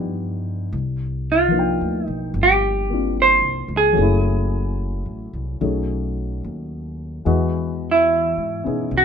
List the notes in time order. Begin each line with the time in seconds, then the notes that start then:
Already playing: G2 F3 B3 D4 D#4 G4
0.72 C2
1.32 F4
1.48 F3 A#3
1.53 D4 D#4
1.59 G5
1.81 D2
2.06 B1 D#4
2.34 G1
2.43 G4
2.90 A#3 C4 D4 F4
3.22 C5
3.42 C2
3.68 C#2
3.77 G#4
3.93 F#3 A3
3.97 F#1 C#4 E4
4.04 G#4
5.06 A1
5.33 C2
5.61 B1 F#3 A3 C#4 D#4 G#4
6.44 D#2
7.25 E2 E3 G#3 B3 F#4 D#5
7.91 E4
8.37 G#2
8.64 B2 B3 C#4 D#4 G#4
8.91 B1
8.97 F#4